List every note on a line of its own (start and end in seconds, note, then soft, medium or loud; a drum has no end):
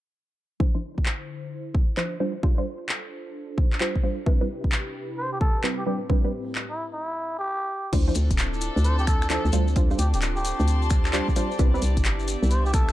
0.60 2.19 D3 medium
0.60 0.73 F3 medium
0.60 0.73 D4 medium
0.60 0.73 E4 medium
0.60 2.19 E4 medium
0.60 4.23 F4 medium
0.60 4.23 A4 medium
0.60 0.73 C5 medium
0.60 2.19 C5 medium
0.60 kick loud
0.75 0.83 F3 medium
0.75 0.83 D4 medium
0.75 0.83 E4 medium
0.75 0.83 C5 medium
0.98 kick medium
1.06 clap loud
1.75 kick medium
1.97 2.17 F3 medium
1.97 2.17 D4 medium
1.97 2.17 E4 medium
1.97 2.17 C5 medium
1.97 clap loud
2.20 2.35 G3 medium
2.20 6.97 D4 medium
2.20 2.35 D4 medium
2.20 2.35 F4 medium
2.20 4.24 C5 medium
2.20 2.35 C5 medium
2.43 2.56 G3 medium
2.43 2.56 D4 medium
2.43 2.56 F4 medium
2.43 2.56 C5 medium
2.43 kick loud
2.58 2.66 G3 medium
2.58 2.66 D4 medium
2.58 2.66 F4 medium
2.58 2.66 C5 medium
2.89 clap loud
3.58 kick loud
3.73 clap medium
3.81 4.00 G3 medium
3.81 4.00 D4 medium
3.81 4.00 F4 medium
3.81 4.00 C5 medium
3.81 clap loud
3.96 kick medium
4.03 4.18 G3 medium
4.03 4.18 D4 medium
4.03 4.18 F4 medium
4.03 4.18 C5 medium
4.26 5.85 C3 medium
4.26 4.39 G3 medium
4.26 4.39 C4 medium
4.26 5.85 E4 medium
4.26 4.39 E4 medium
4.26 5.85 G4 medium
4.26 6.98 B4 medium
4.26 4.39 B4 medium
4.26 kick loud
4.41 4.49 G3 medium
4.41 4.49 C4 medium
4.41 4.49 E4 medium
4.41 4.49 B4 medium
4.64 kick medium
4.72 clap loud
5.18 5.30 C5 medium
5.33 5.39 G4 medium
5.40 5.62 A4 medium
5.40 kick loud
5.64 5.83 G3 medium
5.64 5.83 C4 medium
5.64 5.83 E4 medium
5.64 5.83 B4 medium
5.64 clap loud
5.78 5.84 G4 medium
5.86 7.00 A2 medium
5.86 6.01 G3 medium
5.86 7.00 C4 medium
5.86 6.01 C4 medium
5.86 6.01 D4 medium
5.86 7.00 E4 medium
5.86 5.96 G4 medium
5.86 7.00 G4 medium
5.86 6.01 B4 medium
6.09 6.22 G3 medium
6.09 6.22 C4 medium
6.09 6.22 D4 medium
6.09 6.22 B4 medium
6.09 kick loud
6.24 6.32 G3 medium
6.24 6.32 C4 medium
6.24 6.32 D4 medium
6.24 6.32 B4 medium
6.55 clap loud
6.70 6.85 E4 medium
6.93 7.36 E4 medium
7.39 7.93 G4 medium
7.93 8.11 D2 medium
7.93 8.05 F3 medium
7.93 9.51 C4 medium
7.93 8.05 D4 medium
7.93 10.23 D4 medium
7.93 9.51 E4 medium
7.93 8.05 E4 medium
7.93 11.55 F4 medium
7.93 11.55 A4 medium
7.93 8.05 C5 medium
7.93 kick loud
7.93 closed hi-hat medium
7.93 crash medium
7.93 maracas soft
8.08 8.16 F3 medium
8.08 8.16 D4 medium
8.08 8.16 E4 medium
8.08 8.16 C5 medium
8.08 maracas soft
8.12 8.32 D2 medium
8.12 10.38 A4 medium
8.12 closed hi-hat loud
8.12 maracas medium
8.31 8.70 D1 loud
8.31 kick medium
8.31 closed hi-hat medium
8.31 maracas soft
8.38 clap loud
8.38 closed hi-hat medium
8.38 maracas medium
8.54 maracas soft
8.61 closed hi-hat loud
8.61 maracas loud
8.76 9.39 D2 loud
8.76 maracas soft
8.84 8.96 C5 medium
8.84 closed hi-hat medium
8.84 maracas medium
8.99 9.06 G4 medium
8.99 maracas soft
9.07 9.28 A4 medium
9.07 finger snap medium
9.07 kick loud
9.07 closed hi-hat loud
9.07 maracas medium
9.22 finger snap medium
9.22 maracas soft
9.30 9.50 F3 medium
9.30 9.50 D4 medium
9.30 9.50 E4 medium
9.30 9.49 A4 medium
9.30 9.50 C5 medium
9.30 clap loud
9.30 closed hi-hat medium
9.30 maracas soft
9.45 9.51 D2 medium
9.45 maracas soft
9.53 9.96 D2 medium
9.53 9.68 G3 medium
9.53 11.57 C4 medium
9.53 9.68 D4 medium
9.53 12.92 D4 medium
9.53 9.68 F4 medium
9.53 12.92 G4 medium
9.53 9.68 C5 medium
9.53 closed hi-hat loud
9.53 maracas medium
9.68 12.92 D5 medium
9.68 maracas soft
9.76 9.89 G3 medium
9.76 9.89 D4 medium
9.76 9.89 F4 medium
9.76 9.89 C5 medium
9.76 kick loud
9.76 closed hi-hat medium
9.76 maracas medium
9.91 9.99 G3 medium
9.91 9.99 D4 medium
9.91 9.99 F4 medium
9.91 9.99 C5 medium
9.91 12.25 A5 medium
9.91 maracas soft
9.99 10.15 D2 medium
9.99 10.08 G4 medium
9.99 12.21 C6 medium
9.99 closed hi-hat loud
9.99 maracas medium
10.14 10.53 D1 loud
10.14 10.19 G4 medium
10.14 closed hi-hat medium
10.14 maracas soft
10.22 clap loud
10.22 closed hi-hat medium
10.22 maracas soft
10.37 10.82 G4 medium
10.37 maracas soft
10.45 closed hi-hat loud
10.45 maracas loud
10.60 11.22 D2 loud
10.60 maracas soft
10.68 closed hi-hat medium
10.68 maracas medium
10.82 maracas soft
10.90 finger snap medium
10.90 kick loud
10.90 closed hi-hat loud
10.90 maracas medium
11.05 finger snap medium
11.05 clap medium
11.05 maracas soft
11.13 11.33 G3 medium
11.13 11.33 D4 medium
11.13 11.33 F4 medium
11.13 11.33 C5 medium
11.13 clap loud
11.13 closed hi-hat medium
11.13 maracas soft
11.28 kick medium
11.28 maracas soft
11.36 11.51 G3 medium
11.36 11.51 D4 medium
11.36 11.51 F4 medium
11.36 11.51 C5 medium
11.36 closed hi-hat loud
11.36 maracas medium
11.51 maracas soft
11.59 11.78 C2 medium
11.59 11.72 G3 medium
11.59 12.92 B3 medium
11.59 11.72 C4 medium
11.59 12.92 E4 medium
11.59 11.72 E4 medium
11.59 12.92 G4 medium
11.59 11.72 B4 medium
11.59 kick loud
11.59 closed hi-hat medium
11.59 maracas medium
11.74 11.82 G3 medium
11.74 11.82 C4 medium
11.74 11.82 E4 medium
11.74 11.82 B4 medium
11.74 maracas soft
11.82 11.98 C2 medium
11.82 closed hi-hat loud
11.82 maracas medium
11.97 12.37 G1 loud
11.97 kick medium
11.97 closed hi-hat medium
11.97 maracas soft
12.05 clap loud
12.05 closed hi-hat medium
12.05 maracas medium
12.19 maracas soft
12.28 closed hi-hat loud
12.28 maracas loud
12.32 12.92 E5 medium
12.43 12.92 C2 loud
12.43 maracas soft
12.51 12.63 C5 medium
12.51 closed hi-hat medium
12.51 maracas soft
12.66 12.72 G4 medium
12.66 maracas soft
12.74 12.92 A4 medium
12.74 finger snap medium
12.74 kick loud
12.74 closed hi-hat loud
12.74 maracas loud
12.89 finger snap medium
12.89 maracas soft